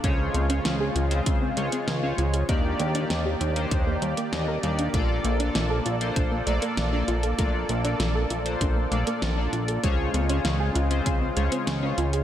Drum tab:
HH |x-xxx-xxx-xxx-xx|x-xxx-xxx-xxx-xx|x-xxx-xxx-xxx-xx|x-xxx-xxx-xxx-xx|
SD |----o-------o---|----o-------o---|----o-------o---|----o-------o---|
BD |o-------o-------|o-------o-------|o-------o-------|o-------o-------|

HH |x-xxx-xxx-xxx-xx|
SD |----o-------o---|
BD |o-------o-------|